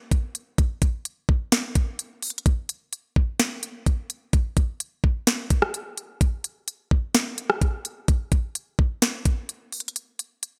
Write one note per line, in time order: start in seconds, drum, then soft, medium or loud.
0.11 kick medium
0.11 closed hi-hat medium
0.35 closed hi-hat medium
0.58 kick loud
0.58 closed hi-hat medium
0.82 kick medium
0.82 closed hi-hat medium
1.05 closed hi-hat medium
1.29 kick medium
1.52 snare loud
1.52 closed hi-hat medium
1.75 kick medium
1.75 closed hi-hat medium
1.99 closed hi-hat medium
2.22 closed hi-hat soft
2.22 open hi-hat medium
2.30 closed hi-hat medium
2.38 closed hi-hat medium
2.46 kick loud
2.46 closed hi-hat medium
2.69 closed hi-hat medium
2.93 closed hi-hat medium
3.16 kick medium
3.40 snare loud
3.40 closed hi-hat medium
3.63 closed hi-hat medium
3.86 kick medium
3.86 closed hi-hat medium
4.10 closed hi-hat medium
4.33 kick loud
4.33 closed hi-hat medium
4.57 kick loud
4.57 closed hi-hat medium
4.80 closed hi-hat medium
5.04 kick medium
5.27 snare loud
5.27 closed hi-hat medium
5.50 kick medium
5.50 closed hi-hat medium
5.62 cross-stick medium
5.74 closed hi-hat medium
5.98 closed hi-hat medium
6.21 kick loud
6.21 closed hi-hat medium
6.44 closed hi-hat medium
6.68 closed hi-hat medium
6.91 kick medium
7.14 snare loud
7.14 closed hi-hat medium
7.38 closed hi-hat medium
7.50 cross-stick medium
7.62 kick medium
7.62 closed hi-hat medium
7.85 closed hi-hat medium
8.08 kick loud
8.08 closed hi-hat medium
8.32 kick medium
8.32 closed hi-hat medium
8.55 closed hi-hat medium
8.79 kick medium
9.02 snare loud
9.02 closed hi-hat medium
9.25 kick medium
9.25 closed hi-hat medium
9.49 closed hi-hat medium
9.72 closed hi-hat soft
9.72 open hi-hat medium
9.80 closed hi-hat medium
9.88 closed hi-hat medium
9.96 closed hi-hat medium
10.19 closed hi-hat medium
10.43 closed hi-hat medium